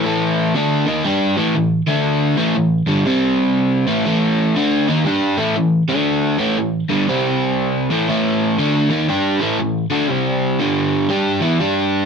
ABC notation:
X:1
M:4/4
L:1/8
Q:"Swing" 1/4=119
K:Am
V:1 name="Overdriven electric guitar" clef=bass
[A,,E,A,]2 [D,A,D] [^D,_B,^D] [G,=DG] [A,,E,A,] [A,,E,] [=D,A,D]- | [D,A,D] [A,,E,A,] [A,,E,] [G,,D,G,] [C,G,C]3 [A,,E,A,] | [A,,E,A,]2 [D,A,D] [^D,_B,^D] [G,=DG] [A,,E,A,] [A,,E,] [=D,A,D]- | [D,A,D] [A,,E,A,] [A,,E,] [G,,D,G,] [C,G,C]3 [A,,E,A,] |
[A,,E,A,]2 [D,A,D] [^D,_B,^D] [G,=DG] [A,,E,A,] [A,,E,] [=D,A,D] | [C,G,C]2 [G,,D,G,]2 [G,DG] [E,B,E] [G,DG]2 |]